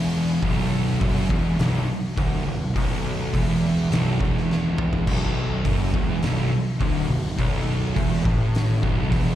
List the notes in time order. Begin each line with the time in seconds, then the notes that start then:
Already playing: E1 E2
0.42 B0 B1, kick, open hi-hat
0.99 F#1 F#2, kick, open hi-hat
1.29 E1 E2, kick
1.58 B0 B1, snare, open hi-hat
2.16 D1 D2, kick, open hi-hat
2.46 B0 B1
2.75 B0 B1, kick, open hi-hat
3.34 E1 E2, kick, open hi-hat
3.91 B0 B1, snare, open hi-hat
4.20 E1 E2, kick
4.37 snare
4.51 snare
4.78 mid tom
4.93 floor tom
5.06 B0 B1, kick, crash
5.65 F#1 F#2, kick, open hi-hat
5.93 E1 E2, kick
6.22 B0 B1, snare, open hi-hat
6.80 D1 D2, kick, open hi-hat
7.08 B0 B1
7.36 B0 B1, kick, open hi-hat
7.96 E1 E2, kick, open hi-hat
8.24 A1 A2, kick
8.55 snare, open hi-hat
8.82 B0 B1, kick
9.10 E1 E2, kick, open hi-hat